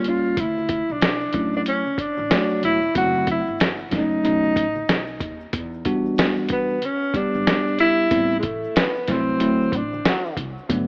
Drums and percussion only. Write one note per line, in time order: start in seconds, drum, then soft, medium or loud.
0.04 closed hi-hat medium
0.04 high conga soft
0.04 low conga medium
0.04 shaker soft
0.25 shaker soft
0.37 kick loud
0.37 closed hi-hat medium
0.37 shaker medium
0.58 high conga medium
0.58 shaker soft
0.69 kick loud
0.69 closed hi-hat medium
0.69 shaker soft
0.89 shaker soft
1.00 snare loud
1.00 closed hi-hat medium
1.00 shaker medium
1.20 shaker soft
1.33 kick medium
1.33 closed hi-hat medium
1.33 low conga medium
1.33 shaker soft
1.53 shaker soft
1.65 closed hi-hat medium
1.65 shaker medium
1.86 high conga medium
1.86 shaker soft
1.97 kick medium
1.97 closed hi-hat medium
1.97 shaker soft
2.17 high conga medium
2.17 shaker soft
2.30 snare loud
2.30 closed hi-hat medium
2.30 shaker medium
2.50 shaker soft
2.61 closed hi-hat medium
2.61 high conga soft
2.61 low conga medium
2.61 shaker soft
2.82 shaker soft
2.94 kick loud
2.94 closed hi-hat medium
2.94 shaker medium
3.15 high conga medium
3.15 shaker soft
3.27 kick medium
3.27 closed hi-hat medium
3.27 low conga medium
3.27 shaker soft
3.47 shaker soft
3.58 snare loud
3.58 closed hi-hat medium
3.58 shaker medium
3.78 shaker soft
3.91 kick medium
3.91 snare soft
3.91 closed hi-hat medium
3.91 low conga medium
3.91 shaker soft
4.11 shaker soft
4.24 closed hi-hat medium
4.24 shaker medium
4.44 high conga medium
4.44 shaker soft
4.55 kick medium
4.55 closed hi-hat medium
4.55 shaker soft
4.76 high conga medium
4.76 shaker soft
4.88 snare loud
4.88 closed hi-hat medium
4.88 shaker medium
5.07 shaker soft
5.19 kick medium
5.19 closed hi-hat medium
5.19 high conga soft
5.19 low conga medium
5.19 shaker soft
5.40 shaker soft
5.53 kick loud
5.53 closed hi-hat medium
5.53 shaker medium
5.73 shaker soft
5.85 kick loud
5.85 closed hi-hat medium
5.85 low conga medium
5.85 shaker soft
6.06 shaker soft
6.17 snare loud
6.17 closed hi-hat medium
6.17 shaker medium
6.36 shaker soft
6.49 kick medium
6.49 closed hi-hat medium
6.49 low conga medium
6.49 shaker soft
6.70 shaker soft
6.82 closed hi-hat medium
6.82 high conga soft
6.82 shaker medium
7.03 shaker soft
7.14 kick medium
7.14 closed hi-hat medium
7.14 shaker soft
7.35 high conga medium
7.35 shaker soft
7.47 snare loud
7.47 closed hi-hat medium
7.47 shaker medium
7.67 shaker soft
7.78 closed hi-hat medium
7.78 low conga medium
7.78 shaker soft
7.99 shaker soft
8.11 kick loud
8.11 closed hi-hat medium
8.11 shaker medium
8.31 shaker soft
8.43 kick loud
8.43 closed hi-hat medium
8.43 low conga medium
8.43 shaker soft
8.64 shaker soft
8.75 snare loud
8.75 closed hi-hat medium
8.75 shaker medium
8.96 shaker soft
9.07 kick medium
9.07 snare soft
9.07 closed hi-hat medium
9.07 low conga medium
9.07 shaker soft
9.29 shaker soft
9.40 closed hi-hat medium
9.40 high conga soft
9.40 shaker medium
9.62 shaker soft
9.72 kick medium
9.72 closed hi-hat medium
9.72 shaker soft
9.93 high conga medium
9.93 shaker soft
10.05 snare loud
10.05 closed hi-hat medium
10.05 shaker medium
10.26 shaker soft
10.37 kick medium
10.37 closed hi-hat medium
10.37 low conga medium
10.37 shaker soft
10.58 shaker soft
10.70 kick loud
10.70 closed hi-hat medium
10.70 shaker medium